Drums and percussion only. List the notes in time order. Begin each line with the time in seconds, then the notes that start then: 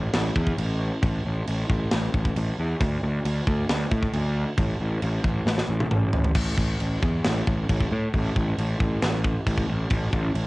0.14 snare, crash
0.36 kick
0.47 kick
0.58 crash
1.03 kick, crash
1.47 crash
1.70 kick
1.91 snare, crash
2.14 kick
2.25 kick
2.36 crash
2.81 kick, crash
3.25 crash
3.47 kick
3.69 snare, crash
3.92 kick
4.03 kick
4.13 crash
4.58 kick, crash
5.02 crash
5.24 kick
5.47 snare
5.58 snare
5.80 high tom
5.91 mid tom
6.13 floor tom
6.24 floor tom
6.35 kick, crash
6.58 kick
6.80 crash
7.03 kick
7.24 snare, crash
7.47 kick
7.69 kick, crash
7.81 kick
8.14 kick, crash
8.36 kick
8.58 crash
8.80 kick
9.02 snare, crash
9.24 kick
9.47 kick, crash
9.58 kick
9.90 kick, crash
10.13 kick
10.35 crash